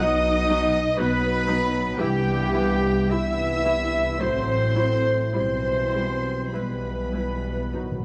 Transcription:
Already playing: D#5
0.00 B1 B2 F#3 B3 D#4 D#5 D#6
0.49 F#3 D#4
0.96 B1 F#3 B3 D#4 B4 B5
1.00 F#3
1.48 F#3 D#4
1.97 C2 G2 E3 G3 B3 E4 G4 G5
2.54 E3 E4
3.10 C2 G2 E3 B3 E4 E5 E6
3.65 E3 E4
4.18 A1 A2 F#3 A3 C4 E4 C5 C6
4.75 F#3 E4
5.34 B1 B2 E3 G3 C4 E4 C5 C6
5.94 G3 E4
6.53 B1 B2 E3 G3 B3 E4 B4 B5
7.13 G3 E4
7.73 B1 B2 D#3 F#3 D#4 F#4
7.83 B2
7.92 B2
8.00 B2

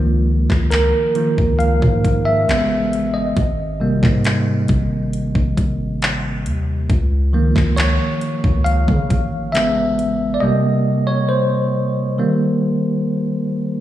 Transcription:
Already playing: C#2 D#3 F3 A#3
0.50 C#2, kick, clap
0.71 A#4, clap, closed hi-hat
1.15 D#3 F3 A#3, closed hi-hat
1.38 C#2, kick
1.59 F5, closed hi-hat
1.82 G#2, kick
2.05 kick, closed hi-hat
2.25 E5
2.48 A1 C#3 G#3 B3, clap, closed hi-hat
2.93 closed hi-hat
3.14 D#5
3.37 G#1, kick, closed hi-hat
3.80 C3 G3 A#3
4.03 G#2, kick, clap
4.24 clap, closed hi-hat
4.68 G#1, kick, closed hi-hat
5.13 closed hi-hat
5.35 G#1, kick
5.57 kick, closed hi-hat
6.02 clap, closed hi-hat
6.46 D#2, closed hi-hat
6.90 C#2, kick, closed hi-hat
7.33 D#3 F3 A#3
7.56 C#2, kick, clap
7.77 C#5, clap, closed hi-hat
8.21 closed hi-hat
8.44 C#2, kick
8.64 F5, closed hi-hat
8.88 C#3, kick
9.10 A1, kick, closed hi-hat
9.52 C#3 G#3 B3 E5, clap, closed hi-hat
9.99 closed hi-hat
10.34 D5
10.40 C3 G3 A#3 D#5
11.07 C#5
11.29 C5
12.18 D#3 G3 A#3

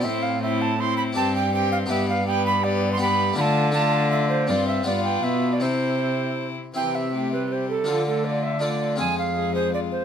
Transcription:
0.00 C4 C5 E5
0.04 A2 C4 E4
0.23 F5
0.42 C4 E4 E5
0.62 A5
0.79 C4 E4 C6
0.97 B5
1.13 G2 C4 D4 G4 A5
1.17 G2 C4
1.35 G5
1.53 C4 G4 G5
1.72 F5
1.86 B3 D4 G4
1.90 G2 B3 E5
2.09 F5
2.26 B3 G4 G5
2.46 B5
2.64 B3 G4 D5
2.93 C6
2.97 B3 D4 G4
3.01 B3 G4 B5
3.33 D3 A3 D4 F4
3.37 D3 A3 F4 A5 B5
3.71 A3 D4 F4 A5
3.76 A3
4.11 E5
4.29 C5
4.47 G2 C4 F4 D5
4.67 E5
4.83 G2 B3 F4 D5
4.88 B3
5.04 G5
5.23 B2 E5
5.53 D5
5.60 C3 C4 E4 C5
6.74 C3 E3 C4 E4 G4 G5
6.95 E5
7.13 A3 G4
7.33 G3 B4
7.51 G4 C5
7.70 A4
7.84 D3 D4 F4 A4
7.89 F3
8.07 A3 A4
8.25 F4 D5
8.43 E5
8.59 A3 D4 F4 A4 D5
8.96 F2 G#3 C4 F4 G#4 G#5
9.01 F2
9.18 F5
9.36 G#3 G#4
9.55 G#4 C5
9.73 F4 D5
9.92 C5

